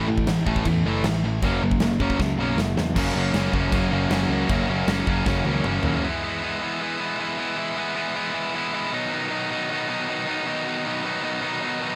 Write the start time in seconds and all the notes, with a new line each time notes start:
Already playing: A2 E3 A3
0.07 A2 E3
0.18 kick
0.27 A1 A2 E3, snare, crash
0.46 A1 A2 E3 A3, kick
0.56 kick
0.65 E2 A2 E3 A3, kick, crash
0.84 F#1 A2 E3 A3
1.04 A1 A2 E3, snare, crash
1.25 A2 E3
1.42 F#1 F#2 C#3 F#3 A#3 C#4, kick, crash
1.62 F#1 F#3 A#3
1.71 kick
1.80 F#1 F#3 A#3, snare, crash
2.00 F#2 F#3 A#3 C#4, kick
2.10 kick
2.18 C#2 F#2 C#3 F#3 A#3, kick, snare
2.38 B1 F#3 A#3 C#4
2.57 F#1 F#3 A#3, snare
2.76 E2 F#3 A#3, snare
2.96 F#1 F#2 C#3 F#3 A#3 C#4, kick, crash
3.16 F#1 F#2 C#3 F#3 A#3 C#4
3.33 F#1 F#2 C#3 F#3 A#3, snare, crash
3.37 C#4
3.53 F#1 F#2 C#3 F#3 A#3 C#4, kick
3.72 F#1 F#2 C#3 F#3 A#3 C#4, kick, crash
3.91 F#1 F#2 C#3 F#3 A#3 C#4
4.10 F#1 F#2 C#3 F#3 A#3 C#4, snare, crash
4.29 C#2 F#2 C#3 F#3 A#3 C#4
4.48 F#1 F#2 C#3 F#3 A#3 C#4, kick, crash
4.68 F#1 F#2 C#3 F#3 A#3 C#4
4.87 F#1 F#2 C#3 F#3 A#3 C#4, snare, crash
5.07 F#1 F#2 C#3 F#3 A#3 C#4, kick
5.26 F#1 F#2 C#3 F#3 A#3 C#4, kick, snare
5.45 C#2 F#2 C#3 F#3 A#3 C#4, high tom
5.64 F#1 F#2 C#3 F#3 A#3 C#4, mid tom
5.83 D#2 F#2 C#3 F#3 A#3, floor tom
5.87 C#4
6.03 E3 G#3 B3 E4
6.23 E3 G#3 B3 E4
6.43 E3 G#3 B3 E4
6.61 E3 G#3 B3 E4
6.80 E3 G#3 B3 E4
6.99 E3 G#3 B3 E4
7.18 E3 G#3 B3 E4
7.38 E3 G#3 B3 E4
7.57 E3 G#3 B3 E4
7.76 E3 G#3 B3 E4
7.94 E3 G#3 B3 E4
8.15 E3 G#3 B3 E4
8.33 E3 G#3 B3 E4
8.54 E3 G#3 B3 E4
8.73 E3 G#3 B3 E4
8.92 B2 D#3 F#3 B3 D#4
9.11 B2 D#3 F#3 B3 D#4
9.30 B2 D#3 F#3 B3 D#4
9.50 B2 D#3 F#3 B3 D#4
9.69 B2 D#3 F#3 B3 D#4
9.88 B2 D#3 F#3 B3 D#4
10.08 B2 D#3 F#3 B3 D#4
10.27 B2 D#3 F#3 B3 D#4
10.46 B2 D#3 F#3 B3 D#4
10.66 B2 D#3 F#3 B3 D#4
10.86 B2 D#3 F#3 B3 D#4
11.03 B2 D#3 F#3 B3 D#4
11.22 B2 D#3 F#3 B3 D#4
11.41 B2 D#3 F#3 B3 D#4
11.61 B2 D#3 F#3 B3 D#4
11.81 B2 D#3 F#3 B3 D#4